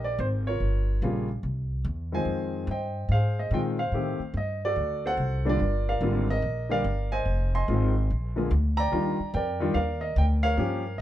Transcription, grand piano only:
0.00 0.43 G4 medium
0.00 0.43 A#4 medium
0.04 0.18 D5 medium
0.20 0.26 C5 medium
0.47 1.03 F4 medium
0.47 1.26 A#4 medium
0.47 1.26 C#5 medium
1.03 1.27 C#3 medium
1.03 1.27 G3 medium
1.03 1.27 A#3 medium
1.03 1.27 F4 medium
2.12 2.66 D#3 medium
2.12 2.66 G#3 medium
2.12 2.66 C4 soft
2.12 2.67 F4 medium
2.12 2.70 C5 medium
2.12 2.70 D#5 medium
2.12 2.66 G#5 medium
2.71 3.11 C5 medium
2.71 3.38 D#5 medium
2.71 3.09 G5 medium
3.12 3.91 G#4 medium
3.12 3.79 C5 medium
3.12 3.39 F5 medium
3.39 3.54 D#5 medium
3.52 3.76 D#3 medium
3.52 3.77 G#3 medium
3.52 3.77 C4 medium
3.52 3.77 F4 medium
3.52 3.60 G5 medium
3.79 4.59 C5 medium
3.79 4.32 F5 medium
3.94 4.18 D#3 medium
3.94 4.18 A3 medium
3.94 4.18 C4 medium
3.94 4.18 G4 medium
4.37 4.61 D#5 medium
4.65 5.43 F#4 medium
4.65 5.05 A4 medium
4.65 5.06 D5 medium
5.06 5.57 A4 medium
5.06 5.57 C5 medium
5.06 5.44 F#5 loud
5.45 5.59 D3 medium
5.45 5.59 G3 medium
5.45 5.59 A#3 medium
5.45 5.59 D4 medium
5.45 6.02 F4 medium
5.49 5.87 A#4 medium
5.49 5.88 D5 medium
5.89 6.29 A#4 medium
5.89 6.67 D5 medium
5.89 6.31 F5 medium
6.02 6.26 D3 medium
6.02 6.26 G3 medium
6.02 6.26 A#3 medium
6.02 6.26 F4 medium
6.30 6.70 A#4 medium
6.30 6.72 D#5 medium
6.69 6.83 D3 medium
6.69 6.83 G3 medium
6.69 6.83 A#3 medium
6.69 6.83 G4 medium
6.69 7.23 A#4 medium
6.69 7.23 D5 medium
6.69 7.13 F5 medium
7.12 7.91 C5 medium
7.12 7.54 D#5 medium
7.12 7.50 G#5 medium
7.55 8.06 D#5 medium
7.55 8.33 G#5 medium
7.55 8.33 C6 medium
7.68 7.92 D#3 medium
7.68 7.92 G#3 medium
7.68 7.92 C4 medium
7.68 7.93 F4 medium
8.36 8.49 D3 medium
8.36 8.49 G#3 medium
8.36 8.50 A#3 medium
8.36 8.50 F4 medium
8.77 9.35 D5 medium
8.77 9.33 G5 medium
8.77 9.30 A#5 loud
8.92 9.16 D#3 medium
8.92 9.16 G3 medium
8.92 9.16 D4 medium
8.92 9.16 F4 medium
9.34 9.74 A#4 medium
9.34 9.74 D5 medium
9.34 9.73 G5 medium
9.60 9.74 D#3 medium
9.60 9.74 G3 medium
9.60 9.74 D4 medium
9.60 9.74 F4 medium
9.74 10.43 A#4 medium
9.74 10.55 D5 medium
9.74 10.02 F5 medium
10.01 10.15 D#5 medium
10.18 10.24 G5 loud
10.43 11.01 A#4 medium
10.43 11.01 C#5 medium
10.43 10.96 F5 loud
10.57 10.82 F3 medium
10.57 10.82 A#3 medium
10.57 10.82 C#4 medium
10.57 10.82 G4 medium
10.98 11.01 D#5 medium

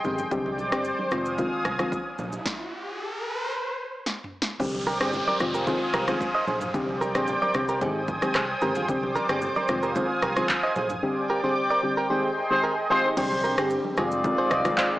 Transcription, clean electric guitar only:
4.87 4.98 G4 medium
4.87 4.97 A#4 loud
5.01 5.11 G#4 medium
5.01 5.10 C5 medium
5.28 5.38 A#4 medium
5.28 5.37 D5 medium
5.54 5.64 G4 medium
5.54 5.64 A#4 medium
5.67 5.78 G#4 medium
5.67 5.78 C5 medium
5.94 6.05 G4 medium
5.94 6.04 A#4 medium
6.08 6.18 G#4 medium
6.08 6.17 C5 medium
6.35 6.45 C5 medium
6.35 6.44 D#5 medium
6.48 6.58 G#4 medium
6.48 6.58 C5 medium
7.01 7.12 G4 medium
7.01 7.12 A#4 medium
7.15 7.25 G#4 medium
7.15 7.25 C5 medium
7.42 7.52 A#4 medium
7.42 7.52 D5 medium
7.69 7.79 G4 medium
7.69 7.78 A#4 medium
7.82 8.02 D#4 medium
7.82 8.02 G#4 medium
8.35 8.46 G#4 medium
8.35 8.46 C5 medium
8.62 8.73 G4 medium
8.62 8.72 A#4 medium
8.76 8.86 F4 medium
8.76 8.85 G#4 medium
9.16 9.26 G4 medium
9.16 9.26 A#4 loud
9.29 9.40 G#4 medium
9.29 9.39 C5 medium
9.56 9.66 A#4 medium
9.56 9.66 D5 medium
9.83 9.93 G4 medium
9.83 9.93 A#4 medium
9.96 10.07 G#4 medium
9.96 10.06 C5 medium
10.23 10.34 G4 medium
10.23 10.33 A#4 medium
10.37 10.47 G#4 medium
10.37 10.46 C5 medium
10.63 10.73 C5 medium
10.63 10.73 D#5 medium
10.76 10.87 G#4 medium
10.76 10.87 C5 medium
11.30 11.41 G4 medium
11.30 11.40 A#4 medium
11.44 11.54 G#4 medium
11.44 11.53 C5 medium
11.70 11.81 A#4 medium
11.70 11.80 D5 medium
11.97 12.07 G4 medium
11.97 12.07 A#4 medium
12.10 12.31 G#4 medium
12.10 12.30 C5 medium
12.64 12.75 G4 medium
12.64 12.74 A#4 medium
12.91 13.01 F4 medium
12.91 13.01 G#4 medium
13.04 13.15 D#4 medium
13.04 13.14 G4 medium
13.17 13.28 D4 medium
13.17 13.28 G4 medium
13.44 13.55 G4 medium
13.44 13.54 A#4 medium
13.58 13.68 G#4 medium
13.58 13.68 C5 medium
13.98 14.09 F4 medium
13.98 14.08 G#4 medium
14.38 14.48 G#4 medium
14.38 14.48 C5 medium
14.51 14.62 C5 medium
14.51 14.62 D#5 medium
14.78 14.89 C5 medium
14.78 14.88 F5 medium

